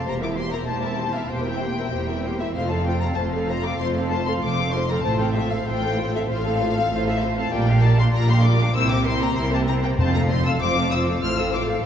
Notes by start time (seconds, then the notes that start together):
0.05 E1 E2 A#3 G4 C5 A#5
0.19 A#4 E5
0.23 C4 E4 D6
0.33 C5 C6
0.38 A#3 G4
0.50 C4 E4 A#4 E5 A#5
0.65 E1 E2 C5 A5
0.70 A#3 G4
0.81 C4 A#4 E5
0.85 E4
0.96 A#3 G4 C5
1.13 C4 E4 A#4 E5 F5
1.28 E1 E2 A#3 G4 C5 G5
1.43 C4 E4 A#4 E5
1.59 A#3 G4 C5
1.76 C4 E4 A#4 E5
1.91 E1 E2 A#3 G4 C5
2.08 C4 E4 A#4 E5
2.23 A#3 G4 C5
2.39 C4 E4 A#4 E5
2.54 F1 F2 A3 F4 C5 F5
2.69 C4 A4 F5 A5
2.86 A3 F4 C5 G5
3.00 A4 F5 A#5
3.04 C4 A4
3.14 F1 F2 C5 A5
3.19 A3 F4
3.33 C4 A4 F5
3.48 A3 F4 C5 A#5
3.64 C4 A4 F5 D6
3.78 F1 F2 A3 F4 C5 C6
3.97 C4 A4 F5
4.10 A3 F4 C5 A5
4.26 C4 A4 F5 C6
4.42 F1 F2 A3 F4 C5 D6
4.59 C4 A4 F5
4.73 A3 F4 C5 C6
4.90 C4 A4 F5 A#5
5.02 A1 A2 A3 F4 C5 A5
5.19 C4 A4 F5 G5
5.33 A3 F4 C5 E5
5.50 C4 A4 F5
5.66 A1 A2 A3 F4 C5 G5
5.80 C4 A4 F5
5.95 A3 F4 C5
6.12 C4 A4 E5 F5
6.27 A1 A2 A3 F4 C5 F5
6.44 C4 A4 F5
6.59 A3 F4 C5
6.75 C4 A4 F5
6.90 A1 A2 A3 F4 C5
7.06 C4 A4 E5 F5
7.20 A3 F4 C5 F5
7.37 C4 A4 F5 A5
7.51 A#1 A#2 G3 F4 A#4 D5 G5
7.68 A#3 D4 G4 F5
7.82 G3 F4 A#4 D5 A5
7.98 A#3 D4 G4 F5 C6
8.13 A#1 A#2 G3 F4 A#4 D5 A#5
8.27 A#3 D4 G4 F5 C6
8.42 G3 F4 A#4 D5 D6
8.60 A#3 D4 G4 F5
8.73 C2 C3 C4 E4 A#4 C5 E6
8.89 A#3 C4 G4 A#4 D6
9.04 C4 E4 A#4 C5 C6
9.20 A#3 C4 G4 A#4 A#5
9.35 C2 C3 C4 E4 A#4 C5 C6
9.49 A#3 C4 G4 A#4
9.54 A5
9.67 C4 E4 A#4 C5 A#5
9.83 A#3 C4 G4 A#4 G5
9.98 F1 F2 C4 F4 C5 A5
10.14 A3 C4 A4 F5 A#5
10.29 C4 F4 C5 C6
10.45 A3 C4 A4 F5 E6
10.59 F1 F2 C4 F4 C5 D6
10.76 A3 C4 A4 F5
10.91 C4 F4 C5 E6
11.06 A3 C4 A4 F5
11.21 A1 A2 A3 F4 C5 F6
11.36 C4 A4 F5 E6
11.52 A3 F4 C5 D6
11.67 C4 A4 F5
11.82 A3 F4